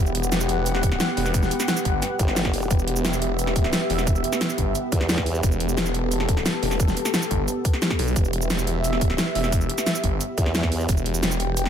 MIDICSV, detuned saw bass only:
0, 0, Header, 1, 2, 480
1, 0, Start_track
1, 0, Key_signature, 1, "minor"
1, 0, Tempo, 340909
1, 1890, Time_signature, 4, 2, 24, 8
1, 16464, End_track
2, 0, Start_track
2, 0, Title_t, "Detuned saw bass"
2, 0, Program_c, 0, 39
2, 0, Note_on_c, 0, 28, 99
2, 671, Note_off_c, 0, 28, 0
2, 690, Note_on_c, 0, 28, 95
2, 1391, Note_off_c, 0, 28, 0
2, 1649, Note_on_c, 0, 28, 97
2, 2110, Note_off_c, 0, 28, 0
2, 2609, Note_on_c, 0, 31, 99
2, 2830, Note_off_c, 0, 31, 0
2, 3810, Note_on_c, 0, 28, 101
2, 4511, Note_off_c, 0, 28, 0
2, 4530, Note_on_c, 0, 28, 97
2, 5231, Note_off_c, 0, 28, 0
2, 5490, Note_on_c, 0, 28, 97
2, 5951, Note_off_c, 0, 28, 0
2, 6450, Note_on_c, 0, 31, 96
2, 6671, Note_off_c, 0, 31, 0
2, 7650, Note_on_c, 0, 28, 100
2, 8351, Note_off_c, 0, 28, 0
2, 8370, Note_on_c, 0, 28, 98
2, 9071, Note_off_c, 0, 28, 0
2, 9330, Note_on_c, 0, 28, 95
2, 9791, Note_off_c, 0, 28, 0
2, 10290, Note_on_c, 0, 31, 96
2, 10511, Note_off_c, 0, 31, 0
2, 11250, Note_on_c, 0, 35, 96
2, 11471, Note_off_c, 0, 35, 0
2, 11490, Note_on_c, 0, 28, 96
2, 12191, Note_off_c, 0, 28, 0
2, 12209, Note_on_c, 0, 28, 97
2, 12910, Note_off_c, 0, 28, 0
2, 13169, Note_on_c, 0, 28, 99
2, 13631, Note_off_c, 0, 28, 0
2, 14130, Note_on_c, 0, 31, 98
2, 14351, Note_off_c, 0, 31, 0
2, 15330, Note_on_c, 0, 28, 101
2, 16031, Note_off_c, 0, 28, 0
2, 16050, Note_on_c, 0, 28, 99
2, 16464, Note_off_c, 0, 28, 0
2, 16464, End_track
0, 0, End_of_file